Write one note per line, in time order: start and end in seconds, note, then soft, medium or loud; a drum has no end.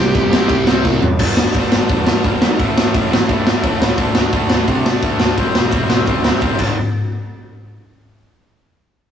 0.00 0.12 C2 medium
0.00 0.12 C3 medium
0.00 0.46 C3 medium
0.00 0.13 G3 medium
0.00 0.47 G3 medium
0.00 0.48 C4 loud
0.00 0.49 E4 loud
0.00 0.64 G4 loud
0.14 0.45 G1 medium
0.14 0.29 C3 medium
0.14 0.30 G3 medium
0.14 kick loud
0.14 crash medium
0.31 0.47 C3 medium
0.31 0.48 G3 loud
0.31 0.48 C4 loud
0.31 snare loud
0.47 0.65 C2 medium
0.47 0.64 C3 medium
0.47 0.65 C3 medium
0.47 0.65 G3 medium
0.47 0.66 C4 medium
0.47 0.66 E4 medium
0.47 kick loud
0.47 crash medium
0.66 0.82 C2 medium
0.66 0.82 C3 medium
0.66 0.82 G3 loud
0.66 1.02 G3 medium
0.66 0.83 C4 loud
0.66 1.01 C4 medium
0.66 1.01 E4 medium
0.66 snare loud
0.70 1.02 C3 medium
0.83 0.99 C2 loud
0.83 0.99 C3 medium
0.83 0.99 G3 medium
0.83 kick loud
0.83 snare medium
1.02 1.21 A1 medium
1.02 1.17 C3 medium
1.02 1.17 G3 medium
1.02 floor tom medium
1.19 1.30 G1 medium
1.19 1.36 G2 loud
1.19 1.36 D3 medium
1.19 1.36 G3 loud
1.19 1.37 B3 medium
1.19 1.37 D4 loud
1.19 kick loud
1.19 crash loud
1.37 1.47 G1 medium
1.37 1.53 G2 medium
1.37 1.54 D3 medium
1.37 1.55 G3 medium
1.37 1.55 B3 medium
1.37 1.55 D4 medium
1.37 snare loud
1.54 1.66 G1 medium
1.54 1.70 G2 medium
1.54 1.71 D3 loud
1.54 1.71 G3 medium
1.54 1.71 B3 loud
1.54 1.71 D4 loud
1.54 kick loud
1.54 open hi-hat medium
1.71 1.84 G1 medium
1.71 1.88 G2 medium
1.71 1.88 D3 medium
1.71 1.89 G3 medium
1.71 1.89 B3 loud
1.71 1.89 D4 medium
1.71 snare loud
1.88 2.11 E2 medium
1.88 2.05 G2 medium
1.88 2.05 D3 medium
1.88 2.05 G3 medium
1.88 2.06 B3 loud
1.88 2.06 D4 medium
1.88 kick loud
1.88 open hi-hat medium
2.06 2.21 G2 medium
2.06 2.22 D3 medium
2.06 2.22 G3 medium
2.06 2.23 B3 loud
2.06 2.23 D4 medium
2.06 snare loud
2.22 2.35 G1 medium
2.22 2.40 G2 loud
2.22 2.39 D3 loud
2.22 2.40 G3 loud
2.22 2.41 B3 loud
2.22 2.40 D4 loud
2.22 kick loud
2.22 open hi-hat medium
2.41 2.53 G#1 medium
2.41 2.57 G2 medium
2.41 2.57 D3 medium
2.41 2.58 G3 medium
2.41 2.58 B3 medium
2.41 2.58 D4 medium
2.41 snare loud
2.59 2.70 A1 medium
2.59 2.75 A2 loud
2.59 2.75 E3 loud
2.59 2.77 A3 medium
2.59 2.76 C#4 medium
2.59 2.76 E4 loud
2.59 kick loud
2.59 open hi-hat medium
2.76 2.88 A1 medium
2.76 2.93 A2 medium
2.76 2.93 E3 medium
2.76 2.94 A3 medium
2.76 2.93 C#4 medium
2.76 2.94 E4 medium
2.76 snare loud
2.94 3.05 A1 medium
2.94 3.08 A2 medium
2.94 3.09 E3 loud
2.94 3.10 A3 loud
2.94 3.10 C#4 loud
2.94 3.10 E4 loud
2.94 kick loud
2.94 open hi-hat medium
3.10 3.22 A1 medium
3.10 3.26 A2 medium
3.10 3.27 E3 medium
3.10 3.27 A3 medium
3.10 3.27 C#4 medium
3.10 3.28 E4 medium
3.10 snare loud
3.27 3.51 G2 medium
3.27 3.44 A2 medium
3.27 3.45 E3 medium
3.27 3.45 A3 medium
3.27 3.45 C#4 loud
3.27 3.45 E4 medium
3.27 kick loud
3.27 open hi-hat medium
3.45 3.61 A2 medium
3.45 3.61 E3 medium
3.45 3.61 A3 medium
3.45 3.62 C#4 medium
3.45 3.62 E4 medium
3.45 snare loud
3.62 3.74 A1 medium
3.62 3.80 A2 medium
3.62 3.80 E3 loud
3.62 3.80 A3 loud
3.62 3.81 C#4 loud
3.62 3.81 E4 loud
3.62 kick loud
3.62 open hi-hat medium
3.81 3.91 C#2 medium
3.81 3.97 A2 medium
3.81 3.97 E3 medium
3.81 3.97 A3 medium
3.81 3.98 C#4 medium
3.81 3.98 E4 medium
3.81 snare loud
3.97 4.09 D2 medium
3.97 4.13 D3 medium
3.97 4.15 A3 medium
3.97 4.15 D4 loud
3.97 4.15 F#4 loud
3.97 kick loud
3.97 open hi-hat medium
4.15 4.26 D2 medium
4.15 4.30 D3 medium
4.15 4.31 A3 medium
4.15 4.31 D4 medium
4.15 4.31 F#4 medium
4.15 snare loud
4.31 4.44 D2 medium
4.31 4.49 D3 medium
4.31 4.49 A3 medium
4.31 4.50 D4 loud
4.31 4.50 F#4 loud
4.31 kick loud
4.31 open hi-hat medium
4.50 4.61 D2 medium
4.50 4.66 D3 medium
4.50 4.66 A3 medium
4.50 4.67 D4 medium
4.50 4.67 F#4 medium
4.50 snare loud
4.67 4.90 C3 medium
4.67 4.84 D3 medium
4.67 4.84 A3 medium
4.67 4.85 D4 medium
4.67 4.85 F#4 loud
4.67 kick loud
4.67 open hi-hat medium
4.85 5.02 D3 medium
4.85 5.02 A3 loud
4.85 5.03 D4 medium
4.85 5.03 F#4 loud
4.85 snare loud
5.02 5.14 D2 medium
5.02 5.18 D3 loud
5.02 5.19 A3 loud
5.02 5.20 D4 loud
5.02 5.20 F#4 loud
5.02 kick loud
5.02 open hi-hat medium
5.19 5.31 D2 medium
5.19 5.36 D3 medium
5.19 5.37 A3 medium
5.19 5.37 D4 loud
5.19 5.37 F#4 loud
5.19 snare loud
5.36 5.49 E1 medium
5.36 5.55 C3 medium
5.36 5.53 E3 medium
5.36 5.54 G3 loud
5.36 5.54 C4 loud
5.36 5.54 E4 loud
5.36 kick loud
5.36 open hi-hat medium
5.54 5.67 E1 medium
5.54 5.71 C3 medium
5.54 5.71 E3 medium
5.54 5.71 G3 medium
5.54 5.72 C4 medium
5.54 5.72 E4 medium
5.54 snare loud
5.71 5.84 E1 medium
5.71 5.88 C3 medium
5.71 5.89 E3 loud
5.71 5.89 G3 loud
5.71 5.89 C4 loud
5.71 5.90 E4 loud
5.71 kick loud
5.71 open hi-hat medium
5.89 6.00 E1 medium
5.89 6.04 C3 medium
5.89 6.07 E3 medium
5.89 6.07 G3 medium
5.89 6.08 C4 medium
5.89 6.08 E4 loud
5.89 snare loud
6.05 6.30 D2 medium
6.05 6.22 C3 medium
6.05 6.24 E3 medium
6.05 6.25 G3 loud
6.05 6.25 C4 medium
6.05 6.25 E4 loud
6.05 kick loud
6.05 open hi-hat medium
6.23 6.39 C3 medium
6.23 6.41 E3 medium
6.23 6.41 G3 medium
6.23 6.42 C4 medium
6.23 6.42 E4 loud
6.23 snare loud
6.40 6.54 E1 medium
6.40 6.58 C3 loud
6.40 6.60 E3 medium
6.40 6.60 G3 loud
6.40 6.61 C4 loud
6.40 6.61 E4 loud
6.40 kick loud
6.40 open hi-hat medium
6.59 6.77 G1 loud
6.59 6.74 G2 medium
6.59 6.75 D3 medium
6.59 6.75 G3 medium
6.59 6.75 B3 loud
6.59 6.75 D4 loud
6.59 kick loud
6.59 crash medium